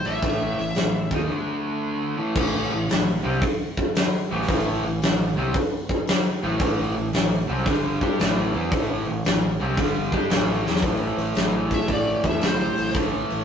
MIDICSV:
0, 0, Header, 1, 5, 480
1, 0, Start_track
1, 0, Key_signature, 0, "minor"
1, 0, Tempo, 530504
1, 214, Time_signature, 4, 2, 24, 8
1, 12162, End_track
2, 0, Start_track
2, 0, Title_t, "Lead electric guitar"
2, 0, Program_c, 0, 29
2, 51, Note_on_c, 0, 76, 83
2, 982, Note_off_c, 0, 76, 0
2, 10621, Note_on_c, 0, 76, 80
2, 10771, Note_off_c, 0, 76, 0
2, 10786, Note_on_c, 0, 74, 75
2, 11110, Note_off_c, 0, 74, 0
2, 11110, Note_on_c, 0, 76, 82
2, 11255, Note_off_c, 0, 76, 0
2, 11289, Note_on_c, 0, 72, 87
2, 11737, Note_off_c, 0, 72, 0
2, 12162, End_track
3, 0, Start_track
3, 0, Title_t, "Distorted electric guitar"
3, 0, Program_c, 1, 30
3, 45, Note_on_c, 1, 45, 95
3, 52, Note_on_c, 1, 52, 85
3, 57, Note_on_c, 1, 57, 96
3, 199, Note_off_c, 1, 45, 0
3, 203, Note_off_c, 1, 52, 0
3, 210, Note_on_c, 1, 45, 80
3, 212, Note_off_c, 1, 57, 0
3, 214, Note_on_c, 1, 52, 77
3, 223, Note_on_c, 1, 57, 96
3, 525, Note_off_c, 1, 45, 0
3, 526, Note_off_c, 1, 52, 0
3, 531, Note_off_c, 1, 57, 0
3, 539, Note_on_c, 1, 45, 54
3, 539, Note_on_c, 1, 52, 65
3, 667, Note_off_c, 1, 45, 0
3, 667, Note_off_c, 1, 52, 0
3, 696, Note_on_c, 1, 45, 54
3, 700, Note_on_c, 1, 52, 73
3, 954, Note_off_c, 1, 45, 0
3, 956, Note_off_c, 1, 52, 0
3, 1020, Note_on_c, 1, 51, 79
3, 1032, Note_on_c, 1, 63, 85
3, 1033, Note_on_c, 1, 58, 78
3, 1170, Note_off_c, 1, 51, 0
3, 1173, Note_on_c, 1, 50, 74
3, 1181, Note_off_c, 1, 58, 0
3, 1182, Note_off_c, 1, 63, 0
3, 1185, Note_on_c, 1, 57, 87
3, 1189, Note_on_c, 1, 62, 83
3, 1962, Note_off_c, 1, 50, 0
3, 1966, Note_on_c, 1, 45, 80
3, 1968, Note_off_c, 1, 57, 0
3, 1971, Note_on_c, 1, 52, 92
3, 1978, Note_off_c, 1, 62, 0
3, 1983, Note_on_c, 1, 57, 92
3, 2118, Note_off_c, 1, 45, 0
3, 2124, Note_off_c, 1, 52, 0
3, 2129, Note_on_c, 1, 45, 91
3, 2130, Note_off_c, 1, 57, 0
3, 2135, Note_on_c, 1, 52, 98
3, 2141, Note_on_c, 1, 57, 101
3, 2443, Note_off_c, 1, 45, 0
3, 2446, Note_off_c, 1, 52, 0
3, 2453, Note_off_c, 1, 57, 0
3, 2454, Note_on_c, 1, 45, 62
3, 2457, Note_on_c, 1, 52, 70
3, 2588, Note_off_c, 1, 45, 0
3, 2589, Note_off_c, 1, 52, 0
3, 2612, Note_on_c, 1, 52, 63
3, 2614, Note_on_c, 1, 45, 64
3, 2874, Note_off_c, 1, 52, 0
3, 2876, Note_off_c, 1, 45, 0
3, 2924, Note_on_c, 1, 48, 77
3, 2933, Note_on_c, 1, 55, 87
3, 2937, Note_on_c, 1, 60, 90
3, 3090, Note_off_c, 1, 48, 0
3, 3095, Note_off_c, 1, 55, 0
3, 3096, Note_off_c, 1, 60, 0
3, 3898, Note_on_c, 1, 45, 89
3, 3900, Note_on_c, 1, 52, 87
3, 3906, Note_on_c, 1, 57, 98
3, 4038, Note_off_c, 1, 45, 0
3, 4044, Note_off_c, 1, 52, 0
3, 4049, Note_on_c, 1, 45, 81
3, 4050, Note_off_c, 1, 57, 0
3, 4055, Note_on_c, 1, 52, 88
3, 4060, Note_on_c, 1, 57, 96
3, 4366, Note_off_c, 1, 45, 0
3, 4369, Note_off_c, 1, 52, 0
3, 4372, Note_off_c, 1, 57, 0
3, 4381, Note_on_c, 1, 45, 57
3, 4386, Note_on_c, 1, 52, 66
3, 4510, Note_off_c, 1, 45, 0
3, 4513, Note_off_c, 1, 52, 0
3, 4545, Note_on_c, 1, 45, 62
3, 4547, Note_on_c, 1, 52, 64
3, 4800, Note_off_c, 1, 45, 0
3, 4800, Note_off_c, 1, 52, 0
3, 4853, Note_on_c, 1, 48, 89
3, 4865, Note_on_c, 1, 55, 77
3, 4866, Note_on_c, 1, 60, 95
3, 5013, Note_off_c, 1, 48, 0
3, 5019, Note_off_c, 1, 55, 0
3, 5019, Note_off_c, 1, 60, 0
3, 5812, Note_on_c, 1, 45, 96
3, 5820, Note_on_c, 1, 52, 97
3, 5821, Note_on_c, 1, 57, 98
3, 5960, Note_off_c, 1, 45, 0
3, 5970, Note_off_c, 1, 52, 0
3, 5971, Note_on_c, 1, 45, 92
3, 5973, Note_off_c, 1, 57, 0
3, 5981, Note_on_c, 1, 52, 93
3, 5984, Note_on_c, 1, 57, 88
3, 6282, Note_off_c, 1, 45, 0
3, 6289, Note_off_c, 1, 52, 0
3, 6291, Note_off_c, 1, 57, 0
3, 6293, Note_on_c, 1, 45, 64
3, 6298, Note_on_c, 1, 52, 73
3, 6423, Note_off_c, 1, 45, 0
3, 6426, Note_off_c, 1, 52, 0
3, 6457, Note_on_c, 1, 45, 67
3, 6461, Note_on_c, 1, 52, 75
3, 6712, Note_off_c, 1, 45, 0
3, 6714, Note_off_c, 1, 52, 0
3, 6769, Note_on_c, 1, 48, 91
3, 6779, Note_on_c, 1, 55, 82
3, 6780, Note_on_c, 1, 60, 89
3, 6927, Note_off_c, 1, 55, 0
3, 6927, Note_on_c, 1, 43, 87
3, 6928, Note_off_c, 1, 48, 0
3, 6933, Note_off_c, 1, 60, 0
3, 6936, Note_on_c, 1, 50, 92
3, 6938, Note_on_c, 1, 55, 98
3, 7237, Note_off_c, 1, 55, 0
3, 7241, Note_off_c, 1, 43, 0
3, 7245, Note_off_c, 1, 50, 0
3, 7248, Note_on_c, 1, 55, 88
3, 7256, Note_on_c, 1, 62, 109
3, 7262, Note_on_c, 1, 67, 99
3, 7406, Note_off_c, 1, 55, 0
3, 7410, Note_off_c, 1, 62, 0
3, 7411, Note_on_c, 1, 45, 86
3, 7413, Note_off_c, 1, 67, 0
3, 7414, Note_on_c, 1, 52, 92
3, 7423, Note_on_c, 1, 57, 95
3, 7717, Note_off_c, 1, 52, 0
3, 7722, Note_off_c, 1, 45, 0
3, 7728, Note_off_c, 1, 57, 0
3, 7728, Note_on_c, 1, 52, 85
3, 7736, Note_on_c, 1, 59, 104
3, 7740, Note_on_c, 1, 64, 96
3, 7879, Note_off_c, 1, 52, 0
3, 7886, Note_off_c, 1, 59, 0
3, 7888, Note_on_c, 1, 45, 91
3, 7890, Note_on_c, 1, 52, 103
3, 7892, Note_off_c, 1, 64, 0
3, 7896, Note_on_c, 1, 57, 101
3, 8200, Note_off_c, 1, 45, 0
3, 8201, Note_off_c, 1, 52, 0
3, 8204, Note_off_c, 1, 57, 0
3, 8213, Note_on_c, 1, 45, 59
3, 8216, Note_on_c, 1, 52, 69
3, 8340, Note_off_c, 1, 45, 0
3, 8342, Note_off_c, 1, 52, 0
3, 8377, Note_on_c, 1, 45, 58
3, 8380, Note_on_c, 1, 52, 70
3, 8629, Note_off_c, 1, 45, 0
3, 8631, Note_off_c, 1, 52, 0
3, 8683, Note_on_c, 1, 48, 88
3, 8695, Note_on_c, 1, 55, 88
3, 8696, Note_on_c, 1, 60, 91
3, 8842, Note_off_c, 1, 48, 0
3, 8845, Note_off_c, 1, 55, 0
3, 8845, Note_on_c, 1, 43, 90
3, 8848, Note_off_c, 1, 60, 0
3, 8853, Note_on_c, 1, 50, 92
3, 8856, Note_on_c, 1, 55, 95
3, 9143, Note_off_c, 1, 55, 0
3, 9153, Note_on_c, 1, 55, 86
3, 9157, Note_off_c, 1, 43, 0
3, 9157, Note_on_c, 1, 62, 84
3, 9161, Note_off_c, 1, 50, 0
3, 9161, Note_on_c, 1, 67, 98
3, 9316, Note_on_c, 1, 45, 89
3, 9317, Note_off_c, 1, 55, 0
3, 9319, Note_off_c, 1, 62, 0
3, 9320, Note_off_c, 1, 67, 0
3, 9323, Note_on_c, 1, 52, 94
3, 9331, Note_on_c, 1, 57, 101
3, 9630, Note_off_c, 1, 52, 0
3, 9633, Note_off_c, 1, 45, 0
3, 9640, Note_off_c, 1, 57, 0
3, 9641, Note_on_c, 1, 52, 99
3, 9643, Note_on_c, 1, 59, 98
3, 9647, Note_on_c, 1, 64, 104
3, 9782, Note_off_c, 1, 52, 0
3, 9786, Note_on_c, 1, 45, 76
3, 9799, Note_off_c, 1, 59, 0
3, 9802, Note_on_c, 1, 52, 86
3, 9803, Note_off_c, 1, 64, 0
3, 9816, Note_on_c, 1, 57, 93
3, 11707, Note_off_c, 1, 45, 0
3, 11710, Note_on_c, 1, 45, 75
3, 11724, Note_off_c, 1, 52, 0
3, 11728, Note_on_c, 1, 52, 86
3, 11741, Note_off_c, 1, 57, 0
3, 11744, Note_on_c, 1, 57, 92
3, 12162, Note_off_c, 1, 45, 0
3, 12162, Note_off_c, 1, 52, 0
3, 12162, Note_off_c, 1, 57, 0
3, 12162, End_track
4, 0, Start_track
4, 0, Title_t, "Fingered electric bass"
4, 0, Program_c, 2, 33
4, 49, Note_on_c, 2, 33, 81
4, 201, Note_off_c, 2, 33, 0
4, 207, Note_on_c, 2, 33, 76
4, 510, Note_off_c, 2, 33, 0
4, 527, Note_on_c, 2, 33, 70
4, 678, Note_off_c, 2, 33, 0
4, 684, Note_on_c, 2, 33, 77
4, 989, Note_off_c, 2, 33, 0
4, 1002, Note_on_c, 2, 39, 87
4, 1160, Note_off_c, 2, 39, 0
4, 2130, Note_on_c, 2, 33, 84
4, 2435, Note_off_c, 2, 33, 0
4, 2466, Note_on_c, 2, 33, 68
4, 2614, Note_off_c, 2, 33, 0
4, 2634, Note_on_c, 2, 33, 79
4, 2927, Note_off_c, 2, 33, 0
4, 2939, Note_on_c, 2, 36, 97
4, 3091, Note_off_c, 2, 36, 0
4, 3909, Note_on_c, 2, 33, 91
4, 4052, Note_off_c, 2, 33, 0
4, 4058, Note_on_c, 2, 33, 83
4, 4358, Note_off_c, 2, 33, 0
4, 4387, Note_on_c, 2, 33, 75
4, 4534, Note_off_c, 2, 33, 0
4, 4551, Note_on_c, 2, 33, 78
4, 4844, Note_off_c, 2, 33, 0
4, 4865, Note_on_c, 2, 36, 99
4, 5012, Note_off_c, 2, 36, 0
4, 5822, Note_on_c, 2, 33, 95
4, 5967, Note_off_c, 2, 33, 0
4, 5973, Note_on_c, 2, 33, 87
4, 6272, Note_off_c, 2, 33, 0
4, 6298, Note_on_c, 2, 33, 79
4, 6447, Note_off_c, 2, 33, 0
4, 6462, Note_on_c, 2, 33, 77
4, 6756, Note_off_c, 2, 33, 0
4, 6780, Note_on_c, 2, 36, 90
4, 6927, Note_off_c, 2, 36, 0
4, 6931, Note_on_c, 2, 31, 88
4, 7230, Note_off_c, 2, 31, 0
4, 7248, Note_on_c, 2, 43, 100
4, 7400, Note_off_c, 2, 43, 0
4, 7417, Note_on_c, 2, 33, 100
4, 7712, Note_off_c, 2, 33, 0
4, 7733, Note_on_c, 2, 40, 95
4, 7881, Note_off_c, 2, 40, 0
4, 7890, Note_on_c, 2, 33, 76
4, 8188, Note_off_c, 2, 33, 0
4, 8224, Note_on_c, 2, 33, 74
4, 8367, Note_off_c, 2, 33, 0
4, 8382, Note_on_c, 2, 33, 82
4, 8674, Note_off_c, 2, 33, 0
4, 8709, Note_on_c, 2, 36, 101
4, 8840, Note_off_c, 2, 36, 0
4, 8846, Note_on_c, 2, 31, 85
4, 9145, Note_off_c, 2, 31, 0
4, 9160, Note_on_c, 2, 43, 89
4, 9313, Note_off_c, 2, 43, 0
4, 9324, Note_on_c, 2, 33, 97
4, 9624, Note_off_c, 2, 33, 0
4, 9649, Note_on_c, 2, 40, 93
4, 9789, Note_off_c, 2, 40, 0
4, 9794, Note_on_c, 2, 33, 82
4, 10035, Note_off_c, 2, 33, 0
4, 10114, Note_on_c, 2, 33, 86
4, 10237, Note_off_c, 2, 33, 0
4, 10275, Note_on_c, 2, 33, 87
4, 10633, Note_off_c, 2, 33, 0
4, 10756, Note_on_c, 2, 33, 73
4, 10996, Note_off_c, 2, 33, 0
4, 11072, Note_on_c, 2, 40, 84
4, 11196, Note_off_c, 2, 40, 0
4, 11249, Note_on_c, 2, 31, 86
4, 11485, Note_off_c, 2, 31, 0
4, 11568, Note_on_c, 2, 33, 81
4, 11687, Note_off_c, 2, 33, 0
4, 11715, Note_on_c, 2, 33, 80
4, 11957, Note_off_c, 2, 33, 0
4, 12048, Note_on_c, 2, 33, 76
4, 12162, Note_off_c, 2, 33, 0
4, 12162, End_track
5, 0, Start_track
5, 0, Title_t, "Drums"
5, 44, Note_on_c, 9, 46, 51
5, 134, Note_off_c, 9, 46, 0
5, 204, Note_on_c, 9, 36, 104
5, 206, Note_on_c, 9, 46, 69
5, 294, Note_off_c, 9, 36, 0
5, 296, Note_off_c, 9, 46, 0
5, 532, Note_on_c, 9, 46, 47
5, 622, Note_off_c, 9, 46, 0
5, 675, Note_on_c, 9, 46, 63
5, 691, Note_on_c, 9, 38, 93
5, 765, Note_off_c, 9, 46, 0
5, 781, Note_off_c, 9, 38, 0
5, 1001, Note_on_c, 9, 46, 48
5, 1005, Note_on_c, 9, 36, 80
5, 1091, Note_off_c, 9, 46, 0
5, 1095, Note_off_c, 9, 36, 0
5, 2132, Note_on_c, 9, 36, 114
5, 2134, Note_on_c, 9, 49, 105
5, 2222, Note_off_c, 9, 36, 0
5, 2224, Note_off_c, 9, 49, 0
5, 2617, Note_on_c, 9, 46, 56
5, 2634, Note_on_c, 9, 38, 97
5, 2708, Note_off_c, 9, 46, 0
5, 2724, Note_off_c, 9, 38, 0
5, 3088, Note_on_c, 9, 46, 56
5, 3093, Note_on_c, 9, 36, 106
5, 3179, Note_off_c, 9, 46, 0
5, 3183, Note_off_c, 9, 36, 0
5, 3415, Note_on_c, 9, 36, 85
5, 3505, Note_off_c, 9, 36, 0
5, 3574, Note_on_c, 9, 46, 61
5, 3590, Note_on_c, 9, 38, 124
5, 3664, Note_off_c, 9, 46, 0
5, 3680, Note_off_c, 9, 38, 0
5, 3998, Note_on_c, 9, 38, 32
5, 4058, Note_on_c, 9, 36, 107
5, 4064, Note_on_c, 9, 46, 62
5, 4088, Note_off_c, 9, 38, 0
5, 4149, Note_off_c, 9, 36, 0
5, 4155, Note_off_c, 9, 46, 0
5, 4541, Note_on_c, 9, 46, 63
5, 4557, Note_on_c, 9, 38, 108
5, 4631, Note_off_c, 9, 46, 0
5, 4647, Note_off_c, 9, 38, 0
5, 5015, Note_on_c, 9, 36, 102
5, 5016, Note_on_c, 9, 46, 58
5, 5106, Note_off_c, 9, 36, 0
5, 5107, Note_off_c, 9, 46, 0
5, 5332, Note_on_c, 9, 36, 82
5, 5423, Note_off_c, 9, 36, 0
5, 5494, Note_on_c, 9, 46, 60
5, 5511, Note_on_c, 9, 38, 112
5, 5585, Note_off_c, 9, 46, 0
5, 5601, Note_off_c, 9, 38, 0
5, 5970, Note_on_c, 9, 36, 109
5, 5971, Note_on_c, 9, 46, 60
5, 6061, Note_off_c, 9, 36, 0
5, 6061, Note_off_c, 9, 46, 0
5, 6451, Note_on_c, 9, 46, 54
5, 6468, Note_on_c, 9, 38, 99
5, 6542, Note_off_c, 9, 46, 0
5, 6558, Note_off_c, 9, 38, 0
5, 6930, Note_on_c, 9, 36, 104
5, 6932, Note_on_c, 9, 46, 50
5, 7021, Note_off_c, 9, 36, 0
5, 7023, Note_off_c, 9, 46, 0
5, 7250, Note_on_c, 9, 36, 82
5, 7341, Note_off_c, 9, 36, 0
5, 7413, Note_on_c, 9, 46, 55
5, 7430, Note_on_c, 9, 38, 113
5, 7504, Note_off_c, 9, 46, 0
5, 7520, Note_off_c, 9, 38, 0
5, 7888, Note_on_c, 9, 36, 109
5, 7888, Note_on_c, 9, 46, 64
5, 7978, Note_off_c, 9, 46, 0
5, 7979, Note_off_c, 9, 36, 0
5, 8365, Note_on_c, 9, 46, 60
5, 8382, Note_on_c, 9, 38, 112
5, 8456, Note_off_c, 9, 46, 0
5, 8472, Note_off_c, 9, 38, 0
5, 8843, Note_on_c, 9, 46, 62
5, 8844, Note_on_c, 9, 36, 100
5, 8933, Note_off_c, 9, 46, 0
5, 8935, Note_off_c, 9, 36, 0
5, 9159, Note_on_c, 9, 36, 78
5, 9250, Note_off_c, 9, 36, 0
5, 9317, Note_on_c, 9, 46, 60
5, 9333, Note_on_c, 9, 38, 115
5, 9408, Note_off_c, 9, 46, 0
5, 9424, Note_off_c, 9, 38, 0
5, 9649, Note_on_c, 9, 38, 65
5, 9729, Note_off_c, 9, 38, 0
5, 9729, Note_on_c, 9, 38, 82
5, 9795, Note_on_c, 9, 36, 108
5, 9795, Note_on_c, 9, 46, 66
5, 9820, Note_off_c, 9, 38, 0
5, 9885, Note_off_c, 9, 36, 0
5, 9886, Note_off_c, 9, 46, 0
5, 10120, Note_on_c, 9, 46, 51
5, 10210, Note_off_c, 9, 46, 0
5, 10270, Note_on_c, 9, 46, 68
5, 10286, Note_on_c, 9, 38, 101
5, 10360, Note_off_c, 9, 46, 0
5, 10376, Note_off_c, 9, 38, 0
5, 10594, Note_on_c, 9, 36, 82
5, 10600, Note_on_c, 9, 46, 57
5, 10685, Note_off_c, 9, 36, 0
5, 10691, Note_off_c, 9, 46, 0
5, 10752, Note_on_c, 9, 36, 83
5, 10754, Note_on_c, 9, 46, 70
5, 10843, Note_off_c, 9, 36, 0
5, 10845, Note_off_c, 9, 46, 0
5, 11074, Note_on_c, 9, 36, 76
5, 11075, Note_on_c, 9, 46, 53
5, 11164, Note_off_c, 9, 36, 0
5, 11165, Note_off_c, 9, 46, 0
5, 11231, Note_on_c, 9, 46, 76
5, 11247, Note_on_c, 9, 38, 104
5, 11322, Note_off_c, 9, 46, 0
5, 11338, Note_off_c, 9, 38, 0
5, 11558, Note_on_c, 9, 46, 54
5, 11649, Note_off_c, 9, 46, 0
5, 11653, Note_on_c, 9, 38, 30
5, 11710, Note_on_c, 9, 46, 77
5, 11715, Note_on_c, 9, 36, 106
5, 11743, Note_off_c, 9, 38, 0
5, 11800, Note_off_c, 9, 46, 0
5, 11805, Note_off_c, 9, 36, 0
5, 12035, Note_on_c, 9, 46, 49
5, 12126, Note_off_c, 9, 46, 0
5, 12162, End_track
0, 0, End_of_file